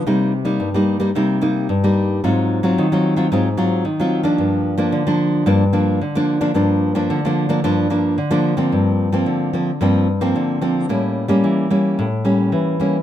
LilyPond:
\new Staff \with { instrumentName = "Nylon-string guitar" } { \time 4/4 \key g \minor \tempo 4 = 111 << { <g bes ees'>8 r16 <g bes ees'>8 <g bes ees'>8 <g bes ees'>16 <g bes ees'>8 <g bes ees'>8 r16 <g bes ees'>8. | <ges c' f'>8. <ges c' f'>8 <ges c' f'>8 <ges c' f'>16 <ges c' f'>16 r16 <ges c' f'>8 r16 <ges c' f'>8 <f bes d'>16~ | <f bes d'>8. <f bes d'>8 <f bes d'>8. <f bes d'>16 r16 <f bes d'>8 r16 <f bes d'>8 <f bes d'>16 | <f bes d'>8. <f bes d'>8 <f bes d'>8 <f bes d'>16 <f bes d'>8 <f bes d'>8 r16 <f bes d'>8 <f bes c'>16~ |
<f bes c'>8. <f bes c'>8. <f bes c'>16 r16 <f bes c'>8 r16 <f bes c'>8. <f bes c'>8 | <g bes cis'>8. <g bes cis'>8. <g bes cis'>8. r16 <g bes cis'>4 <g bes cis'>16 r16 | } \\ { c4 g,4 c4 g,4 | aes,4 ees4 aes,4 ees4 | g,4 d4 g,4 d4 | g,4 d4 g,4 d4 |
g,4 d4 g,4 d4 | a,4 e4 a,4 e4 | } >> }